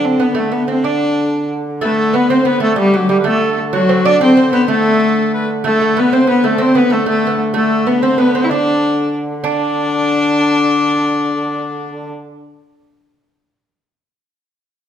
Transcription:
Already playing: hurdy-gurdy D3, lute D4
0.05 viola da gamba C4
0.20 lute B3, viola da gamba B3
0.35 lute A3, viola da gamba A3
0.52 lute B3, viola da gamba B3
0.68 lute C4, viola da gamba C4
0.84 viola da gamba D4, lute D4
1.81 hurdy-gurdy D3, lute A3, viola da gamba A3, shawm A4 B4
1.90 shawm A4
1.98 shawm A4
2.14 lute B3, viola da gamba B3, shawm B4
2.30 lute C4, viola da gamba C4, shawm C5
2.45 lute B3, viola da gamba B3, shawm B4
2.60 lute A3, viola da gamba A3, shawm A4
2.76 lute G3, viola da gamba G3, shawm G4
2.94 lute F#3, viola da gamba F#3
3.09 lute G3, viola da gamba G3, shawm G4
3.20 shawm B4
3.24 lute A3, viola da gamba A3, shawm A4
3.73 lute F#3, viola da gamba F#3, shawm F#4
3.89 lute C4
4.05 lute D4, viola da gamba D4, shawm D5
4.21 lute C4, viola da gamba C4, shawm C5
4.37 lute C4
4.53 lute B3, viola da gamba B3
4.68 lute A3, viola da gamba A3, shawm A4
5.34 shawm B4
5.64 hurdy-gurdy D3, lute A3, viola da gamba A3, shawm A4
5.82 lute A3
5.97 lute B3, viola da gamba B3, shawm B4
6.13 lute C4, viola da gamba C4, shawm C5
6.27 lute B3, viola da gamba B3, shawm B4
6.44 lute A3, viola da gamba A3, shawm A4
6.58 lute C4, viola da gamba C4, shawm C5
6.75 lute B3, viola da gamba B3, shawm B4
6.90 lute A3, viola da gamba A3, shawm A4
7.06 lute A3, viola da gamba A3, shawm A4
7.27 lute B3
7.54 lute A3, viola da gamba A3, shawm A4
7.87 lute B3, viola da gamba B3
8.02 viola da gamba C4, lute C4, shawm C5
8.18 lute B3, viola da gamba B3, shawm B4
8.35 lute C4, shawm C5
8.44 viola da gamba E4
8.49 viola da gamba D4, lute D4, shawm D5
9.43 hurdy-gurdy D3, lute D4, viola da gamba D4, shawm D5

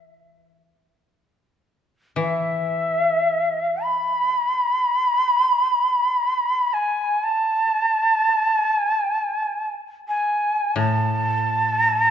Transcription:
Already playing: koto E3
2.16 koto E3
2.21 shakuhachi E5
3.83 shakuhachi B5
6.73 shakuhachi G#5
7.23 shakuhachi A5
8.68 shakuhachi G#5
10.08 shakuhachi G#5
10.76 koto A2, shakuhachi A5

